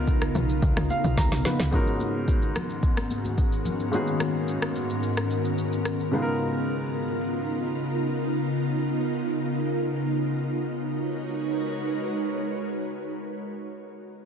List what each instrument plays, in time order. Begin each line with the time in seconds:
Already playing: log drum bass C#2, ambient pad C#3 B3 D#4 F4 A#4, grand piano B3 D#4 F4 A#4
0.07 kick, shaker
0.22 cross-stick, shaker
0.35 log drum bass B1, high conga, low conga, shaker
0.49 shaker
0.62 log drum bass C#2, kick, shaker
0.77 log drum bass C#2, cross-stick, high conga, shaker
0.90 grand piano F5, high conga, shaker
1.04 log drum bass B1, high conga, shaker
1.17 log drum bass C#2, grand piano A#5, kick, snare, high conga, shaker
1.32 log drum bass B1, snare, shaker
1.45 grand piano B3 D#4 F4 B4, snare, high conga, low conga, shaker
1.60 log drum bass C#2, snare, shaker
1.71 grand piano G#2 B3 C#4 D#4 F#4, ambient pad G#2 D#3 B3 C#4 F#4 A#4, kick, low conga, shaker
1.75 grand piano A#4
1.87 shaker
2.00 high conga, shaker
2.28 kick, shaker
2.42 shaker
2.55 cross-stick, high conga, low conga, shaker
2.70 shaker
2.83 kick, shaker
2.97 cross-stick, high conga, shaker
3.10 high conga, shaker
3.25 high conga, shaker
3.38 kick, shaker
3.52 shaker
3.65 high conga, low conga, shaker
3.80 shaker
3.91 grand piano G#2 A#3 C#4 D#4 F#4, shaker
3.95 grand piano B3 G#4
4.07 shaker
4.20 cross-stick, shaker
4.48 shaker
4.62 cross-stick, shaker
4.76 shaker
4.90 shaker
5.03 shaker
5.17 cross-stick, shaker
5.30 shaker
5.45 shaker
5.58 shaker
5.73 shaker
5.85 cross-stick, shaker
6.00 shaker
6.12 grand piano C#3 G#3 B3 D#4 F4, ambient pad C#3 D#4 F4
6.16 grand piano G#4
6.22 grand piano A#4
10.53 ambient pad G#3 D#4 F#4 A#4 B4 C#5